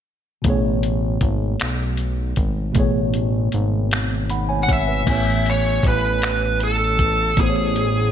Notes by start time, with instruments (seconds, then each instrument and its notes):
0.42 analog synth bass A1, tine electric piano B2 A3 B3, kick, closed hi-hat
0.48 tine electric piano G#4 C#5
0.83 closed hi-hat
1.21 analog synth bass G#1, kick, closed hi-hat
1.60 analog synth bass B1, finger snap, closed hi-hat
1.97 closed hi-hat
2.36 analog synth bass G#1, kick, closed hi-hat
2.72 tine electric piano B2 A3, kick, closed hi-hat
2.76 analog synth bass A1, tine electric piano B3 G#4 C#5
3.14 closed hi-hat
3.52 analog synth bass G#1, closed hi-hat
3.91 finger snap, closed hi-hat
4.30 tine electric piano F#5 B5, closed hi-hat
4.49 tine electric piano C#5 G#5
4.63 lead electric guitar F#5
4.69 tine electric piano C#5 F#5, kick, closed hi-hat
4.73 lead electric guitar E5
4.88 tine electric piano B4 E5
5.03 tine electric piano A2 A3, kick, closed hi-hat, crash
5.07 analog synth bass A1, tine electric piano B3 G#5
5.12 tine electric piano C#5
5.46 lead electric guitar C#5, closed hi-hat
5.83 analog synth bass A1, kick, closed hi-hat
5.88 lead electric guitar B4
6.22 finger snap, closed hi-hat
6.60 lead electric guitar A4, closed hi-hat
6.99 kick, closed hi-hat
7.34 analog synth bass A1, tine electric piano A2 A3, kick, closed hi-hat
7.39 tine electric piano B3 G#4 C5, lead electric guitar G#4
7.50 tine electric piano C#5
7.76 closed hi-hat